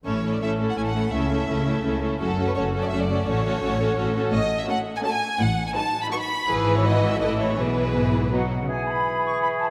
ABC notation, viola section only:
X:1
M:3/4
L:1/8
Q:1/4=168
K:A
V:1 name="Viola section"
[A,C] [A,C] [A,C] [A,C] [A,C] [A,C] | [A,C] [A,C] [A,C] [A,C] [A,C] [A,C] | [A,C] [A,C] [A,C] [A,C] [A,C] [A,C] | [A,C] [A,C] [A,C] [A,C] [A,C] [A,C] |
[K:E] z2 [A,C]2 [A,C]2 | z2 [F,D]2 [F,D]2 | [E,E]4 [E,E]2 | [E,B,]4 [F,B,] z |
z6 |]